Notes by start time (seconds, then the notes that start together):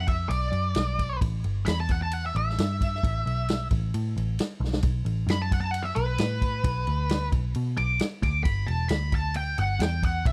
Already playing: F2
0.07 E5, kick, ride
0.29 B1 D5, ride
0.52 F#2, ride
0.75 B1, snare, ride
0.99 kick, ride
1.21 A1, kick, ride
1.44 G1, ride
1.66 E2 B5, snare, ride
1.80 A5
1.89 F#5, kick, ride
2.02 A5
2.11 F#5, ride
2.26 E5
2.35 A1 E5, ride
2.50 snare
2.58 G2, snare, ride
2.81 kick, ride
2.95 snare
3.03 A1, kick, ride
3.26 B1, ride
3.48 snare, ride
3.71 A1, kick, ride
3.94 A2, ride
4.17 A1, ride
4.39 snare, ride
4.60 B1, snare
4.73 snare
4.83 B1, kick, ride
5.05 A1, ride
5.27 F#2 B5, snare, ride
5.42 A5
5.51 F#5, kick, ride
5.60 A5
5.71 F#5, ride
5.83 E5
5.95 B1 B4, ride
6.18 A2, snare, ride
6.42 kick, ride
6.64 B1, kick, ride
6.87 D2, ride
7.09 snare, ride
7.32 B1, kick, ride
7.55 B2, ride
7.77 B1 D6, ride
7.99 snare, ride
8.22 D2 D6, kick, ride
8.44 G1 B5, kick, ride
8.67 E1 A5, ride
8.88 D2 B5, snare, ride
9.12 A5, kick, ride
9.34 G5, ride
9.58 G1 F#5, ride
9.79 E2 G5, snare, ride
10.03 F#5, kick, ride
10.25 B1 E5, kick, ride